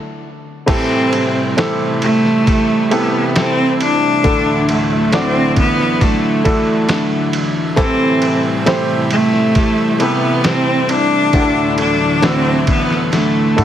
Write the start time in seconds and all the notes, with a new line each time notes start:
Already playing: E4 A4
0.66 A2 C3 E3 G3 A3 C4 E4 G4 A4, kick, crash, ride
0.70 C4
1.13 G3 C4 E4 A4, ride
1.57 A3 C4 E4 G4 A4, snare, ride
2.02 A3, ride
2.25 snare
2.46 G3 E4 A4, kick, ride
2.91 C3 A3 B3 E4 G4 A4, ride
3.35 G3 C4 E4 A4, snare, ride
3.81 D4, ride
4.24 D2 A2 D3 F#3 A3 D4 E4 F#4 A4, kick, ride
4.69 A3 E4 F#4 A4, ride
5.12 A3 C4 D4 E4 F#4 D5, snare, ride
5.56 B3, kick, ride
5.79 snare
6.01 A3 D4 E4 F#4 A4, kick, ride
6.44 A3 D4 E4 F#4 A4, kick, ride
6.89 D4 E4 F#4 A4, snare, ride
7.33 ride
7.76 A2 C3 E3 G3 A3 C4 E4 G4 A4, kick, ride
8.22 ride
8.66 A3 C4 E4 G4 C5, snare, ride
9.11 A3, ride
9.33 snare
9.55 G3 A3 E4 A4, kick, ride
10.00 C3 A3 B3 E4 G4 A4, ride
10.44 G3 C4 E4 A4, snare, ride
10.89 D4, ride
11.33 D2 A2 D3 E3 F#3 A3 D4 E4 F#4 G4 A4, kick, ride
11.42 A4
11.78 D4 E4 F#4 A4, ride
12.22 A3 C4 D4 E4 F#4 A4, snare, ride
12.67 B3, kick, ride
12.90 snare
13.12 A3 D4 E4 F#4 A4, snare, ride
13.56 A3 D4 E4 F#4 A4, high tom, ride